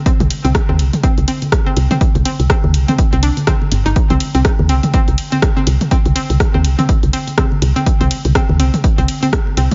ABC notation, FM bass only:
X:1
M:4/4
L:1/16
Q:"Swing 16ths" 1/4=123
K:Cm
V:1 name="FM bass" clef=bass
z C,, z C,, z E,, C,, z2 C,, z4 C,, z | z C,, z C,, z E,, C,, z2 C,,2 z3 G,,, G,,, | z C,, z C,, z E,, C,, z2 C,, z4 C,, z | z C,, z C,, z E,, C,, z2 C,, z4 C,, z |
z C,, z C,, z E,, C,, z2 C,, z4 C,, z |]